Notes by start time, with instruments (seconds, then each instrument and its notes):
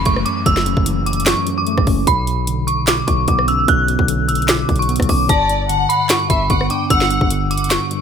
Already playing: tine electric piano F#2 E3, downlifter
0.05 808-style bass F#1, tine electric piano A3, synth bell C#6, kick, closed hi-hat
0.16 cross-stick
0.25 tine electric piano C#4, synth bell D6, closed hi-hat
0.46 808-style bass F#1, tine electric piano F#2, synth bell E6, kick, closed hi-hat
0.57 snare
0.66 tine electric piano F#2, closed hi-hat
0.77 808-style bass F#1, kick
0.86 tine electric piano E3, closed hi-hat
1.06 synth bell D6, closed hi-hat
1.13 closed hi-hat
1.20 closed hi-hat
1.26 tine electric piano F#2, synth bell C#6, snare, clap, closed hi-hat
1.47 tine electric piano F#2, closed hi-hat
1.58 synth bell D6
1.67 tine electric piano A3, closed hi-hat
1.78 808-style bass A1, kick, cross-stick
1.87 808-style bass F#1, tine electric piano C#4, kick, open hi-hat
2.07 808-style bass B1, tine electric piano B2, synth bell B5, kick, closed hi-hat
2.27 tine electric piano B2, closed hi-hat
2.47 tine electric piano D3, closed hi-hat
2.67 synth bell C#6, closed hi-hat
2.87 tine electric piano B2, synth bell D6, snare, clap, closed hi-hat
3.07 808-style bass B1, tine electric piano B2, synth bell C#6, kick, closed hi-hat
3.28 808-style bass B1, tine electric piano B3, synth bell D6, kick, closed hi-hat
3.39 cross-stick
3.48 tine electric piano C#4, synth bell E6, closed hi-hat
3.68 808-style bass B1, tine electric piano B2, synth bell F#6, kick, closed hi-hat
3.88 tine electric piano B2, closed hi-hat
3.99 808-style bass B1, kick
4.08 tine electric piano D3, closed hi-hat
4.28 synth bell E6, closed hi-hat
4.35 closed hi-hat
4.42 closed hi-hat
4.48 tine electric piano B2, synth bell D6, snare, clap, closed hi-hat
4.68 808-style bass B1, tine electric piano B2, kick, closed hi-hat
4.76 synth bell C#6, closed hi-hat
4.82 closed hi-hat
4.89 tine electric piano B3, closed hi-hat
4.96 closed hi-hat
5.00 808-style bass B1, kick, cross-stick, closed hi-hat
5.09 808-style bass B1, tine electric piano C#4, synth bell D6, kick, open hi-hat
5.29 808-style bass G1, tine electric piano G2, violin section D5, synth bell A5, kick, closed hi-hat
5.49 tine electric piano G2, closed hi-hat
5.69 tine electric piano D3, violin section F#5, closed hi-hat
5.89 synth bell B5, closed hi-hat
6.09 tine electric piano G2, synth bell C#6, snare, clap, closed hi-hat
6.30 808-style bass G1, tine electric piano G2, violin section E5, synth bell B5, kick, closed hi-hat
6.50 808-style bass G1, tine electric piano B3, violin section F#5, synth bell C#6, kick, closed hi-hat
6.61 cross-stick
6.70 tine electric piano D4, violin section G5, synth bell D6, closed hi-hat
6.90 808-style bass G1, tine electric piano G2, violin section F#5, synth bell E6, kick, closed hi-hat
7.01 snare
7.11 tine electric piano G2, closed hi-hat
7.21 808-style bass G1, kick
7.30 tine electric piano D3, closed hi-hat
7.51 synth bell D6, closed hi-hat
7.58 closed hi-hat
7.64 closed hi-hat
7.70 tine electric piano G2, synth bell C#6, snare, clap, closed hi-hat
7.90 tine electric piano G2, closed hi-hat